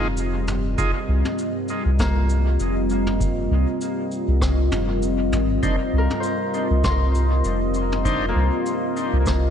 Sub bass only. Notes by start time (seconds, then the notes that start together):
Already playing: F1
0.78 F1
1.08 C2
1.86 C2
2.60 F1
3.51 C2
4.28 C2
4.72 F1
5.33 G#1
5.63 F1
5.93 C2
6.71 C2
7.45 F1
8.36 C2
9.13 C2